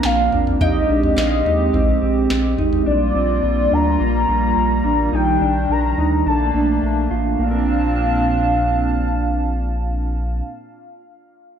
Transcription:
Already playing: clean electric guitar A#3, analog synth pad A#3 C4 D4
0.03 analog synth bass A#1, soft synth lead F5, snare
0.32 analog synth bass A1, clean electric guitar D4, floor tom
0.47 floor tom
0.60 analog synth bass A#1, analog synth pad G#3 C4 G4, clean electric guitar D#4, soft synth lead D#5, qanun G5, kick, floor tom
0.89 analog synth bass A#1, clean electric guitar D4
1.03 floor tom
1.16 analog synth bass A#1, soft synth lead D#5, qanun F5, snare
1.45 analog synth bass D#2, clean electric guitar D#4, floor tom
1.74 analog synth bass A#1, clean electric guitar C4, kick, floor tom
2.02 analog synth bass A#1, clean electric guitar C4
2.30 analog synth bass A#1, snare
2.58 analog synth bass G#1, clean electric guitar D#4, floor tom
2.73 floor tom
2.86 analog synth bass A#1, analog synth pad G3 A#3 F4, clean electric guitar D4, soft synth lead D5
3.15 analog synth bass A#1, clean electric guitar C4
3.43 analog synth bass A#1
3.71 analog synth bass D2, clean electric guitar D4, soft synth lead A#5
4.00 analog synth bass A#1, clean electric guitar A#3
4.28 analog synth bass A#1, clean electric guitar A#3
4.57 analog synth bass A#1
4.84 analog synth bass A1, clean electric guitar D4
5.13 analog synth bass A#1, analog synth pad D#3 D4, clean electric guitar D#4, soft synth lead G5
5.41 analog synth bass A#1, clean electric guitar D4
5.69 analog synth bass A#1, soft synth lead A#5
5.98 analog synth bass D2, clean electric guitar D#4
6.26 analog synth bass A#1, analog synth pad A3 A#3 D4, clean electric guitar D4, soft synth lead A5
6.54 analog synth bass A#1, clean electric guitar D4
6.83 analog synth bass A#1
7.11 analog synth bass A1, clean electric guitar F4
7.39 analog synth bass A#1, analog synth pad A#2 A#3 C4 D4 A5, clean electric guitar A#3, soft synth lead F5
7.43 clean electric guitar D4 F4
7.51 clean electric guitar A#4

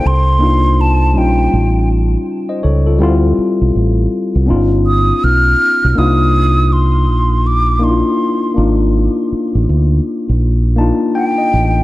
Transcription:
Already playing: tine electric piano A4 C5
0.05 fingered electric bass C2, flute C6
0.39 tine electric piano A#3 D4 D#4
0.43 tine electric piano F4
0.81 flute A5
1.13 fingered electric bass A#1, tine electric piano G3 C#4 D#4
1.18 tine electric piano F4, flute G5
1.53 fingered electric bass A1
2.49 tine electric piano C5 D#5
2.63 fingered electric bass C#2, tine electric piano A4 C#5
2.87 tine electric piano F4 A4
2.99 fingered electric bass D2, tine electric piano G3 C4 E4
3.03 tine electric piano F4
3.38 muted fingered electric bass stroke
3.61 fingered electric bass B1
3.75 fingered electric bass A1
4.35 fingered electric bass C2
4.46 fingered electric bass G1, tine electric piano B3 C#4 D#4
4.50 tine electric piano F4
4.87 flute D#6
5.24 fingered electric bass B1, flute F6
5.84 fingered electric bass B1
5.95 fingered electric bass C2, tine electric piano A#3 D4 D#4 F4, flute D#6
6.73 flute C6
7.09 fingered electric bass A#1
7.47 flute D6
7.79 tine electric piano A#3 D4 D#4
7.84 tine electric piano E4, flute C6
7.91 tine electric piano F4
8.54 fingered electric bass G#1, tine electric piano A#3 D4 D#4
8.59 tine electric piano F4
9.32 muted fingered electric bass stroke
9.55 fingered electric bass A1
9.69 fingered electric bass D2
10.29 fingered electric bass A#1
10.76 tine electric piano A#3 D4 D#4 A5
10.81 tine electric piano F4
11.15 tine electric piano G5, flute G5
11.38 tine electric piano D#5
11.54 fingered electric bass A1

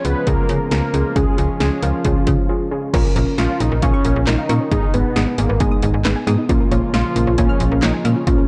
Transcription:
Already playing: analog synth pad C#3 F3 G#3 B3 F4
0.05 fm bass C#2, synth pluck C#4 F4 G#4, analog synth lead B4, closed hi-hat
0.27 fm bass C#2, synth pluck C#4 F4 G#4, analog synth lead A#4, kick, closed hi-hat
0.49 fm bass C#3, synth pluck C#4 F4 G#4, closed hi-hat
0.71 fm bass C#2, synth pluck C#4 F4 G#4, analog synth lead A#4, snare, closed hi-hat
0.94 fm bass C#2, synth pluck C#4 F4 G#4, closed hi-hat
1.16 fm bass C#2, synth pluck C#4 F4 G#4, analog synth pad C#4, analog synth lead G#4, kick, closed hi-hat
1.38 fm bass C#2, synth pluck C#4 F4 G#4, closed hi-hat
1.60 fm bass C#2, synth pluck C#4 F4 G#4, analog synth lead G#4, snare, closed hi-hat
1.82 fm bass C#2, synth pluck C#4 F4 A#4, analog synth lead F4, closed hi-hat
2.05 fm bass C#2, synth pluck C#4 F4 G#4, kick, closed hi-hat
2.27 fm bass C#3, synth pluck C#4 F4 G#4, kick, closed hi-hat
2.49 synth pluck C#4 F4 G#4
2.71 synth pluck C#4 F4 G#4
2.94 fm bass A#1, synth pluck C#4 F4 A#4, synth arpeggio sound C#4, kick, closed hi-hat, crash
3.05 synth arpeggio sound G#4
3.16 fm bass A#1, synth pluck C#4 F4 A#4, synth arpeggio sound A#4, closed hi-hat
3.38 fm bass A#1, synth pluck C#4 F4 A#4, analog synth lead F4, synth arpeggio sound C#6, snare, closed hi-hat
3.49 synth arpeggio sound C#4
3.60 fm bass A#1, synth pluck C#4 F4 A#4, analog synth lead D#4, synth arpeggio sound G#4, closed hi-hat
3.71 fm bass A#1, synth arpeggio sound A#4
3.82 fm bass A#1, synth pluck C#4 F4 C#5, analog synth lead C#4, synth arpeggio sound F5, kick, closed hi-hat
3.94 synth arpeggio sound C#6
4.05 fm bass A#1, synth arpeggio sound C#4, synth pluck C#4 F4 A#4, closed hi-hat
4.16 fm bass A#1, synth arpeggio sound G#4
4.27 fm bass A#1, synth pluck C#4 F4 A#4, analog synth lead D#4, synth arpeggio sound A#4, snare, clap, closed hi-hat
4.38 synth arpeggio sound F5
4.49 fm bass A#2, synth pluck C#4 F4 A#4, synth arpeggio sound C#6, closed hi-hat
4.60 synth arpeggio sound C#4
4.71 fm bass G#1, synth pluck B3 D#4 G#4, synth arpeggio sound D#4, analog synth lead D#4, kick, closed hi-hat
4.83 synth arpeggio sound G#4
4.94 fm bass G#1, synth pluck B3 D#4 G#4, analog synth lead B3, synth arpeggio sound B4, closed hi-hat
5.16 fm bass G#1, synth pluck B3 D#4 G#4, synth arpeggio sound D#6, snare, closed hi-hat
5.27 synth arpeggio sound D#4
5.38 fm bass G#1, analog synth lead A#3, synth pluck B3 D#4 G#4, synth arpeggio sound G#4, closed hi-hat
5.49 fm bass G#1, synth arpeggio sound B4
5.60 fm bass G#1, analog synth lead G#3, synth pluck B3 D#4 G#4, synth arpeggio sound G#5, kick, closed hi-hat
5.71 synth arpeggio sound D#6
5.82 fm bass G#1, synth pluck B3 D#4 G#4, synth arpeggio sound D#4, closed hi-hat
5.94 fm bass G#1, synth arpeggio sound G#4
6.05 fm bass G#1, synth pluck B3 D#4 G#4, synth arpeggio sound B4, snare, clap, closed hi-hat
6.16 synth arpeggio sound G#5
6.27 fm bass G#2, synth pluck B3 D#4 G#4, synth arpeggio sound D#6, closed hi-hat
6.38 synth arpeggio sound D#4
6.49 fm bass A#1, analog synth pad C#3 F3 G#3 A#3 F4, synth pluck A#3 C#4 F4, synth arpeggio sound F4, kick, closed hi-hat
6.60 synth arpeggio sound A#4
6.71 fm bass A#1, synth pluck A#3 C#4 F4, synth arpeggio sound C#5, closed hi-hat
6.94 fm bass A#1, synth pluck A#3 C#4 F4, analog synth lead F4, synth arpeggio sound F6, snare, closed hi-hat
7.05 synth arpeggio sound F4
7.16 fm bass A#1, synth pluck A#3 C#4 F4, synth arpeggio sound A#4, closed hi-hat
7.27 fm bass A#1, synth arpeggio sound C#5
7.38 fm bass A#1, synth pluck A#3 C#4 F4, analog synth lead C#4, synth arpeggio sound G#5, kick, closed hi-hat
7.49 synth arpeggio sound F6
7.60 fm bass A#1, synth pluck A#3 C#4 F4, synth arpeggio sound F4, closed hi-hat
7.71 fm bass A#1, synth arpeggio sound A#4
7.82 fm bass A#1, synth pluck A#3 C#4 F4, analog synth lead D#4, synth arpeggio sound C#5, snare, clap, closed hi-hat
7.94 synth arpeggio sound G#5
8.05 fm bass A#2, synth pluck A#3 C#4 F4, analog synth lead C#4, synth arpeggio sound F6, closed hi-hat
8.16 synth arpeggio sound F4
8.27 fm bass A#1, synth pluck A#3 C#4 F4, synth arpeggio sound F4, kick, closed hi-hat
8.38 synth arpeggio sound A#4

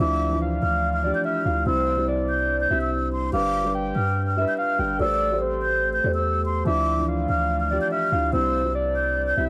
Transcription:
0.00 808-style bass D2, felt piano F3 D4 E4, glass harmonica A3 D4 D5, soft synth lead E5, flute D6
0.30 felt piano E3 F3 D4
0.42 soft synth lead F5
0.62 808-style bass D2, flute F6
0.93 flute F6
1.03 felt piano F3 D4 G4, soft synth lead D5
1.15 flute G6
1.25 soft synth lead E5, flute F6
1.44 808-style bass D2, felt piano F3 D4 E4, soft synth lead F5
1.65 808-style bass C2, felt piano C3 G3 E4, glass harmonica G3 C5, soft synth lead C5, flute E6
1.96 felt piano C3 G3 E4
2.08 soft synth lead D5
2.29 flute G6
2.61 flute G6
2.70 808-style bass C2, felt piano C3 G3 E4, soft synth lead E5
2.81 flute E6
3.13 flute C6
3.32 808-style bass G1, felt piano G3 D4 B4, glass harmonica D4 B4, soft synth lead F5, flute D6
3.64 felt piano G3 D4 B4
3.75 soft synth lead G5
3.96 808-style bass G2, flute F6
4.27 flute F6
4.36 felt piano G3 D4 B4, soft synth lead E5
4.48 flute G6
4.58 soft synth lead F5, flute F6
4.78 808-style bass G1, felt piano G3 D4 B4, soft synth lead G5
4.99 808-style bass A1, felt piano A3 G4 C5, glass harmonica A3 G4 C5, soft synth lead D5, flute E6
5.30 felt piano A3 G4 C5
5.42 soft synth lead C5
5.62 flute G6
5.93 flute G6
6.03 808-style bass E2, felt piano A3 G4 C5
6.14 flute E6
6.46 flute C6
6.65 808-style bass D2, felt piano F3 D4 E4, glass harmonica A3 D4 D5, soft synth lead E5, flute D6
6.96 felt piano E3 F3 D4
7.08 soft synth lead F5
7.29 808-style bass D2, flute F6
7.60 flute F6
7.70 felt piano F3 D4 G4, soft synth lead D5
7.81 flute G6
7.92 soft synth lead E5, flute F6
8.11 808-style bass D2, felt piano F3 D4 E4, soft synth lead F5
8.32 808-style bass C2, felt piano C3 G3 E4, glass harmonica G3 C5, soft synth lead C5, flute E6
8.63 felt piano C3 G3 E4
8.75 soft synth lead D5
8.96 flute G6
9.27 flute G6
9.36 808-style bass C2, felt piano C3 G3 E4, soft synth lead E5

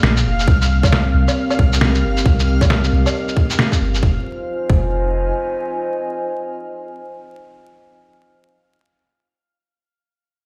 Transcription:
Already playing: analog synth pad A#3 F4 G#4 D5, synth texture F5
0.03 808-style bass A#1, snare
0.17 shaker
0.25 808-style bass F1
0.39 shaker
0.47 808-style bass C2, analog synth pad C4, kick
0.62 shaker
0.69 analog synth pad A#4
0.83 kick, low woodblock, shaker
0.92 analog synth pad G4, snare
1.14 808-style bass C2
1.28 low woodblock, shaker
1.50 low woodblock, shaker
1.59 808-style bass C2, kick
1.63 analog synth pad D#5
1.73 shaker
1.81 snare
1.95 shaker
2.04 808-style bass G1
2.17 shaker
2.26 808-style bass C2, kick
2.40 shaker
2.61 kick, low woodblock, shaker
2.70 snare
2.84 shaker
2.93 808-style bass C2
3.06 low woodblock, shaker
3.28 shaker
3.37 kick
3.50 shaker
3.59 snare
3.72 kick, shaker
3.81 808-style bass G1
3.95 shaker
4.03 808-style bass F1, analog synth pad F4, kick
4.11 analog synth pad C5
4.18 analog synth pad D#5
4.22 analog synth pad G#5
4.69 808-style bass F1, kick

